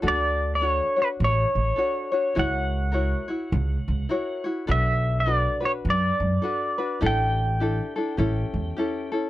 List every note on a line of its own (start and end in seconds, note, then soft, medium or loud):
0.02 0.79 D2 medium
0.02 0.60 D4 medium
0.02 0.62 F#4 medium
0.02 0.60 A4 medium
0.08 0.54 D5 medium
0.55 0.66 D5 medium
0.61 0.97 D4 medium
0.61 0.96 F#4 medium
0.61 0.96 A4 medium
0.61 0.95 C#5 medium
0.66 1.01 C#5 medium
0.96 1.76 D4 soft
0.96 1.78 F#4 soft
0.96 1.78 C#5 soft
1.02 1.07 B4 medium
1.20 1.43 A1 medium
1.24 2.42 C#5 medium
1.55 1.70 A1 medium
1.76 2.12 D4 medium
1.76 2.12 F#4 medium
1.76 2.12 A4 medium
1.76 2.10 C#5 medium
2.12 2.35 D4 soft
2.12 2.35 F#4 soft
2.12 2.35 C#5 medium
2.35 3.12 C#2 medium
2.35 2.92 E4 medium
2.35 2.93 F#4 medium
2.35 2.91 A#4 medium
2.35 2.93 C#5 medium
2.39 4.44 F#5 medium
2.92 3.29 E4 medium
2.92 3.28 F#4 medium
2.92 3.27 A#4 medium
2.92 3.27 C#5 medium
3.28 4.08 E4 soft
3.28 4.10 F#4 soft
3.28 4.09 C#5 soft
3.52 3.75 C#2 medium
3.88 4.03 C#2 medium
4.09 4.45 E4 medium
4.09 4.44 F#4 medium
4.09 4.44 A#4 medium
4.09 4.43 C#5 medium
4.44 4.68 E4 soft
4.44 4.67 F#4 soft
4.44 4.67 C#5 medium
4.67 5.45 B1 medium
4.67 5.26 D4 medium
4.67 5.26 F#4 medium
4.67 5.25 A4 medium
4.67 5.26 B4 medium
4.71 5.18 E5 medium
5.20 5.66 D5 medium
5.26 5.62 D4 medium
5.26 5.60 F#4 medium
5.26 5.62 A4 medium
5.26 5.59 B4 medium
5.61 6.42 D4 soft
5.61 6.42 F#4 soft
5.61 6.43 B4 soft
5.65 5.71 C#5 medium
5.85 6.08 F#2 medium
5.90 7.08 D5 medium
6.20 6.35 F#2 medium
6.42 6.78 D4 medium
6.42 6.78 F#4 medium
6.42 6.78 A4 medium
6.42 6.77 B4 medium
6.78 7.00 D4 soft
6.78 7.01 F#4 soft
6.78 7.02 B4 medium
7.01 7.78 A1 medium
7.01 7.60 D4 medium
7.01 7.61 E4 medium
7.01 7.59 G4 medium
7.01 7.62 A4 medium
7.06 9.11 G5 medium
7.60 7.96 D4 medium
7.60 7.96 E4 medium
7.60 7.96 G4 soft
7.60 7.95 A4 medium
7.96 8.18 D4 soft
7.96 8.17 E4 soft
7.96 8.18 A4 medium
8.17 8.41 A1 medium
8.17 8.77 C#4 medium
8.17 8.78 E4 medium
8.17 8.75 G4 medium
8.17 8.79 A4 medium
8.54 8.69 E2 medium
8.77 9.12 C#4 medium
8.77 9.12 E4 medium
8.77 9.12 G4 medium
8.77 9.10 A4 medium
9.12 9.30 C#4 soft
9.12 9.30 E4 soft
9.12 9.30 A4 medium